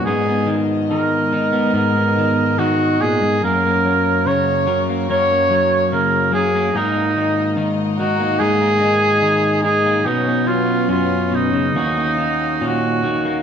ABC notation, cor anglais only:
X:1
M:4/4
L:1/8
Q:1/4=72
K:Abdor
V:1 name="Cor anglais"
A z B2 B2 G A | B2 d z d2 B A | E2 z G A3 A | E F F E3 G2 |]